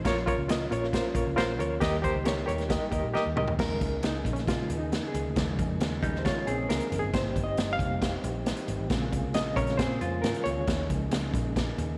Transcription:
0.05 picked electric bass A#1, reed electric piano A#2 F4 A#4 C#5, tonewheel organ F3 A#3 C#4 F4, kick, snare, closed hi-hat, muted conga
0.26 reed electric piano F4 A#4 C#5, kick, closed hi-hat, muted conga
0.38 picked electric bass C#2
0.49 reed electric piano F4 A#4 D#5, snare, closed hi-hat, high conga
0.71 picked electric bass A#1, reed electric piano F4 A#4 C#5, closed hi-hat, low conga
0.84 snare
0.93 reed electric piano F4 A#4 C5, kick, snare, closed hi-hat
1.15 picked electric bass A#1, reed electric piano F4 A#4 C#5, kick, closed hi-hat, muted conga
1.27 picked electric bass C#2
1.36 picked electric bass A#1, reed electric piano F4 A#4 C5, snare, closed hi-hat, high conga
1.59 picked electric bass D2, reed electric piano F4 A#4 C#5, closed hi-hat, high conga
1.80 picked electric bass D#2, reed electric piano D#3 G4 A#4 D#5, tonewheel organ G3 D#4 G4, kick, snare, closed hi-hat, muted conga
2.02 reed electric piano G4 A#4 C5, kick, closed hi-hat, muted conga
2.15 picked electric bass C#2
2.24 reed electric piano G4 A#4 C#5, snare, closed hi-hat, high conga
2.46 picked electric bass D#2, reed electric piano G4 A#4 C#5, closed hi-hat, low conga
2.58 snare, closed hi-hat
2.69 reed electric piano G4 A#4 D#5, kick, snare, closed hi-hat
2.91 picked electric bass D#2, reed electric piano G4 A#4 D#5, kick, closed hi-hat, muted conga
3.04 picked electric bass A#2
3.14 reed electric piano G4 A#4 D#5, snare, high conga
3.26 picked electric bass D#2, high conga
3.36 picked electric bass C#2, reed electric piano G4 A#4 D#5, mid tom, high conga
3.48 picked electric bass D2, floor tom
3.59 picked electric bass D#2, reed electric piano C#3 F3 G#3 A#4, tonewheel organ C#3 A#3 D#4 G#4, kick, snare, crash, muted conga
3.81 picked electric bass C#2, kick, closed hi-hat, muted conga
4.03 picked electric bass C#2, reed electric piano D#4, snare, closed hi-hat, high conga
4.25 picked electric bass A#1, kick, closed hi-hat, low conga
4.33 reed electric piano C#4, closed hi-hat
4.38 snare
4.47 reed electric piano C#3 F3 G#3 F4, kick, snare, closed hi-hat
4.70 picked electric bass D#2, closed hi-hat, muted conga, low conga
4.78 reed electric piano D#4
4.92 snare, closed hi-hat, high conga
5.08 reed electric piano G#4
5.14 picked electric bass C#2, closed hi-hat, high conga
5.26 picked electric bass D2
5.35 picked electric bass D#2, reed electric piano C#3 F3 G#3, kick, snare, closed hi-hat, muted conga
5.59 picked electric bass F2, kick, closed hi-hat, muted conga
5.80 picked electric bass D#2, snare, closed hi-hat, high conga
6.03 picked electric bass D#2, hollow-body jazz guitar G3 D#4, kick, closed hi-hat, low conga
6.15 reed electric piano C5, snare
6.25 picked electric bass D#3, hollow-body jazz guitar G#3 F4, reed electric piano C#5, kick, snare, closed hi-hat, low conga
6.47 picked electric bass A#1, hollow-body jazz guitar C4 G#4, closed hi-hat
6.69 picked electric bass C#2, reed electric piano A#4, snare, closed hi-hat, high conga
6.80 closed hi-hat
6.92 picked electric bass F#1, closed hi-hat, high conga
6.99 picked electric bass G1, reed electric piano G#4
7.13 picked electric bass G#1, reed electric piano C3 G3 A#3 C5, tonewheel organ G3 C4 G4, kick, snare, closed hi-hat, muted conga
7.36 picked electric bass G1, kick, closed hi-hat, muted conga
7.44 reed electric piano D#5
7.57 picked electric bass G1, snare, closed hi-hat, high conga
7.73 reed electric piano F5
7.79 picked electric bass F1, reed electric piano C3 G3 A#3, kick, closed hi-hat, low conga
8.02 kick, snare, closed hi-hat
8.24 picked electric bass A#1, closed hi-hat, muted conga, low conga
8.46 snare, closed hi-hat, high conga
8.57 closed hi-hat
8.68 picked electric bass G#1, closed hi-hat, high conga
8.79 picked electric bass A1
8.90 picked electric bass A#1, reed electric piano C#3 G#3 C4, tonewheel organ C#3 A#3 F4 G#4, kick, snare, closed hi-hat, muted conga
9.13 picked electric bass C2, kick, closed hi-hat, muted conga
9.34 picked electric bass A#1, reed electric piano D#5, snare, closed hi-hat, high conga
9.56 picked electric bass A#1, reed electric piano C#3 G#3 C4 C#5, hollow-body jazz guitar C#4 A#4, kick, closed hi-hat, low conga
9.67 snare, closed hi-hat
9.78 picked electric bass A#2, hollow-body jazz guitar C4 G#4, reed electric piano C5, kick, snare, closed hi-hat, low conga
10.01 picked electric bass F2, hollow-body jazz guitar G#3 F4, closed hi-hat, muted conga
10.22 picked electric bass G#2, reed electric piano A#4, snare, closed hi-hat, high conga
10.34 closed hi-hat
10.44 picked electric bass C#2, reed electric piano C#5, closed hi-hat, high conga
10.57 picked electric bass D2
10.67 picked electric bass D#2, tonewheel organ C#3 D#4, kick, snare, closed hi-hat, muted conga
10.89 picked electric bass C#2, reed electric piano F3 G#3 C#4, kick, closed hi-hat, muted conga
11.11 picked electric bass C#2, snare, closed hi-hat, high conga
11.34 picked electric bass A#1, kick, closed hi-hat, low conga
11.56 kick, snare, closed hi-hat
11.78 picked electric bass D#2, closed hi-hat, muted conga, low conga

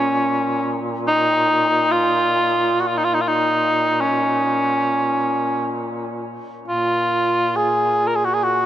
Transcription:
Already playing: duduk A#2, cor anglais C#4
1.07 cor anglais D#4
1.91 cor anglais F4
2.80 cor anglais F#4
2.87 cor anglais F4
2.97 cor anglais D#4
3.04 cor anglais F4
3.14 cor anglais D#4
3.21 cor anglais F4
3.27 cor anglais D#4
4.01 cor anglais C#4
6.66 duduk A#2, cor anglais F4
7.56 cor anglais G#4
8.07 cor anglais A#4
8.15 cor anglais G#4
8.25 cor anglais F#4
8.34 cor anglais G#4
8.43 cor anglais F#4

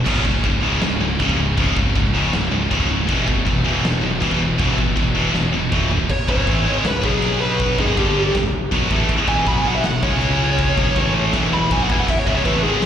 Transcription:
0.06 fingered electric bass C#1, distorted electric guitar C#2 G#2 C#3, kick, china, crash
0.25 distorted electric guitar C#2 G#2, kick
0.44 fingered electric bass C#1, distorted electric guitar C#2 G#2, kick, china
0.63 fingered electric bass C#1, distorted electric guitar C#2 G#2 C#3
0.82 fingered electric bass C#1, distorted electric guitar C#2 G#2, snare, china
1.01 fingered electric bass C#1, distorted electric guitar C#2 G#2
1.20 fingered electric bass C#1, distorted electric guitar C#2 G#2 C#3, kick, china
1.29 kick
1.39 distorted electric guitar C#2 G#2
1.57 fingered electric bass C#1, distorted electric guitar C#2 G#2 C#3, kick, china
1.77 fingered electric bass C#1, distorted electric guitar C#2 G#2, kick
1.95 fingered electric bass C#1, distorted electric guitar C#2 G#2, kick, china
2.14 distorted electric guitar C#2 G#2 C#3
2.33 fingered electric bass C#1, distorted electric guitar C#2 G#2, snare, china
2.52 fingered electric bass C#1, distorted electric guitar C#2 G#2
2.71 fingered electric bass C#1, distorted electric guitar C#2 G#2 C#3, kick, china
2.80 kick
2.89 distorted electric guitar C#2 G#2
3.07 fingered electric bass E1, distorted electric guitar E2 B2 E3, kick, china
3.26 distorted electric guitar E2 B2, kick
3.45 fingered electric bass E1, distorted electric guitar E2 B2, kick, china
3.64 fingered electric bass E1, distorted electric guitar E2 B2 E3
3.83 fingered electric bass E1, distorted electric guitar E2 B2, snare, china
4.01 fingered electric bass E1, distorted electric guitar E2 B2
4.20 fingered electric bass E1, distorted electric guitar E2 B2 E3, kick, china
4.31 kick
4.39 distorted electric guitar E2 B2
4.58 fingered electric bass E1, distorted electric guitar E2 B2 E3, kick, china
4.77 fingered electric bass E1, distorted electric guitar E2 B2, kick
4.96 fingered electric bass E1, distorted electric guitar E2 B2, kick, china
5.15 distorted electric guitar E2 B2 E3
5.34 fingered electric bass E1, distorted electric guitar E2 B2, snare
5.53 fingered electric bass E1, distorted electric guitar E2 B2
5.72 fingered electric bass D#1, distorted electric guitar E2 B2 E3, kick, mid tom
5.91 distorted electric guitar E2 B2, floor tom
6.10 lead electric guitar C#5, kick, crash, china
6.28 fingered electric bass C#1, distorted electric guitar C#2 G#2 C#3, lead electric guitar C#5, kick
6.47 fingered electric bass A1, distorted electric guitar A2 E3 A3, kick, china
6.65 fingered electric bass G#1, distorted electric guitar G#2 D#3 G#3
6.85 fingered electric bass C#1, distorted electric guitar C#2 G#2, lead electric guitar B4, snare, china
7.03 fingered electric bass B1, distorted electric guitar B2 F#3 B3, lead electric guitar G#4, kick
7.22 china
7.42 lead electric guitar B4
7.60 kick, china
7.78 fingered electric bass G#1, distorted electric guitar G#2 D#3 G#3, lead electric guitar G#4, kick
7.97 fingered electric bass G1, distorted electric guitar G2 D3 G3, lead electric guitar G4, kick, china
8.35 fingered electric bass C#1, distorted electric guitar C#2 G#2, kick, snare, china
8.72 fingered electric bass B1, distorted electric guitar B2 F#3 B3, kick, china
8.91 fingered electric bass A1, distorted electric guitar A2 E3 A3, kick
9.09 kick, china
9.28 fingered electric bass E1, distorted electric guitar E2 B2 E3, lead electric guitar G#5, kick
9.46 fingered electric bass B1, distorted electric guitar B2 F#3 B3, lead electric guitar B5, kick, china
9.58 lead electric guitar G#5
9.65 fingered electric bass B1, distorted electric guitar B2 F#3 B3, lead electric guitar F#5
9.75 lead electric guitar E5
9.84 fingered electric bass E1, distorted electric guitar E2 B2, lead electric guitar F#5, snare, china
10.03 fingered electric bass C#2, distorted electric guitar C#3 G#3 C#4, lead electric guitar C#5, kick
10.21 china
10.58 kick, china
10.77 fingered electric bass B1, distorted electric guitar B2 F#3 B3, kick
10.96 fingered electric bass A1, distorted electric guitar A2 E3 A3, kick, china
11.33 fingered electric bass E1, distorted electric guitar E2 B2 E3, kick, snare, china
11.54 lead electric guitar B5
11.71 fingered electric bass B1, distorted electric guitar B2 F#3 B3, lead electric guitar G#5, kick, china
11.82 lead electric guitar F#5
11.90 fingered electric bass E1, distorted electric guitar E2 B2 E3, lead electric guitar G#5, kick
12.00 lead electric guitar F#5
12.08 lead electric guitar E5, kick, crash, china
12.19 lead electric guitar C#5
12.26 fingered electric bass C#1, distorted electric guitar C#2 G#2 C#3, lead electric guitar E5, kick
12.35 lead electric guitar C#5
12.45 fingered electric bass A1, distorted electric guitar A2 E3 A3, lead electric guitar B4, kick, china
12.63 fingered electric bass G#1, distorted electric guitar G#2 D#3 G#3, lead electric guitar G#4
12.82 distorted electric guitar C#2 G#2, snare, china

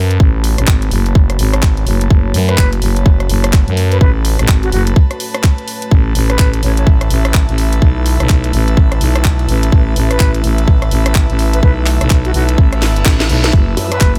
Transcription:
Already playing: fm bass F#2, ambient pad A3 F#4 C#5, analog synth pad B4 A5
0.11 closed hi-hat
0.20 fm bass A1, kick
0.44 open hi-hat
0.58 fm bass A1, cross-stick, closed hi-hat
0.67 kick, clap
0.82 closed hi-hat
0.91 fm bass F#1, open hi-hat
1.06 closed hi-hat
1.15 kick
1.30 cross-stick, closed hi-hat
1.39 fm bass G#1, open hi-hat
1.54 cross-stick, closed hi-hat
1.62 kick, clap
1.77 closed hi-hat
1.87 fm bass F#1, open hi-hat
2.01 closed hi-hat
2.10 kick
2.34 fm bass F#2, open hi-hat
2.49 flute B4, cross-stick, closed hi-hat
2.58 fm bass F#1, kick, clap
2.73 closed hi-hat
2.82 fm bass F#1, open hi-hat
2.96 closed hi-hat
3.06 kick
3.20 cross-stick, closed hi-hat
3.29 fm bass F#1, open hi-hat
3.44 cross-stick, closed hi-hat
3.53 kick, clap
3.68 fm bass F#2, closed hi-hat
3.77 open hi-hat
3.92 flute B4, closed hi-hat
4.01 fm bass A1, flute B4, kick
4.25 open hi-hat
4.39 fm bass A1, cross-stick, closed hi-hat
4.48 kick, clap
4.63 flute F#4, closed hi-hat
4.72 fm bass F#1, flute F#4, open hi-hat
4.87 closed hi-hat
4.96 kick
5.11 cross-stick, closed hi-hat
5.20 open hi-hat
5.35 cross-stick, closed hi-hat
5.43 kick, clap
5.58 closed hi-hat
5.68 open hi-hat
5.82 closed hi-hat
5.91 fm bass A1, ambient pad E4 B4, kick
6.15 fm bass A1, open hi-hat
6.30 flute B4, cross-stick, closed hi-hat
6.39 fm bass A1, kick, clap
6.46 analog synth pad E5
6.54 closed hi-hat
6.63 fm bass A1, flute C#5, open hi-hat
6.77 flute C#5, closed hi-hat
6.87 kick
7.01 cross-stick, closed hi-hat
7.10 fm bass A1, open hi-hat
7.25 cross-stick, closed hi-hat
7.34 kick, clap
7.49 fm bass A1, closed hi-hat
7.58 open hi-hat
7.73 closed hi-hat
7.82 fm bass B1, kick
8.06 open hi-hat
8.20 fm bass B1, cross-stick, closed hi-hat
8.29 fm bass B1, kick, clap
8.44 closed hi-hat
8.53 fm bass A1, open hi-hat
8.68 closed hi-hat
8.77 kick
8.92 cross-stick, closed hi-hat
9.01 fm bass B1, open hi-hat
9.16 cross-stick, closed hi-hat
9.24 kick, clap
9.39 closed hi-hat
9.49 fm bass A1, open hi-hat
9.63 closed hi-hat
9.72 fm bass A1, kick
9.96 fm bass A1, open hi-hat
10.11 flute B4, cross-stick, closed hi-hat
10.20 fm bass A1, kick, clap
10.35 closed hi-hat
10.44 fm bass A1, open hi-hat
10.58 closed hi-hat
10.68 kick
10.82 cross-stick, closed hi-hat
10.91 fm bass A1, open hi-hat
11.06 cross-stick, closed hi-hat
11.15 kick, clap
11.30 fm bass A1, closed hi-hat
11.39 open hi-hat
11.53 flute B4, closed hi-hat
11.63 fm bass B1, flute B4, kick
11.86 clap, open hi-hat
12.01 fm bass B1, cross-stick, closed hi-hat
12.10 fm bass B1, kick, clap
12.25 flute F#4, closed hi-hat
12.34 fm bass B1, flute F#4, open hi-hat
12.49 closed hi-hat
12.58 fm bass A1, kick, reverse cymbal
12.73 cross-stick, closed hi-hat
12.82 snare, open hi-hat
12.96 closed hi-hat
13.05 fm bass A1, kick, snare, clap
13.20 snare, closed hi-hat
13.29 fm bass B1, open hi-hat
13.44 snare, closed hi-hat
13.53 fm bass F#1, ambient pad A3 F#4 C#5, kick
13.77 wobble bass F#2, open hi-hat
13.92 flute B4, cross-stick, closed hi-hat
14.01 fm bass F#1, kick, clap
14.15 closed hi-hat

